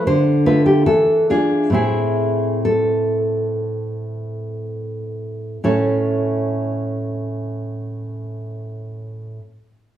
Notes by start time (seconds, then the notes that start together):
0.07 D3 C5
0.46 A3 F4 B4
0.66 G4
0.86 E3 A4
1.30 D4 F4 G#4
1.70 A2 C4 E4
1.74 G#4
2.65 A4
5.64 A2 C#4 E4 A4 C#5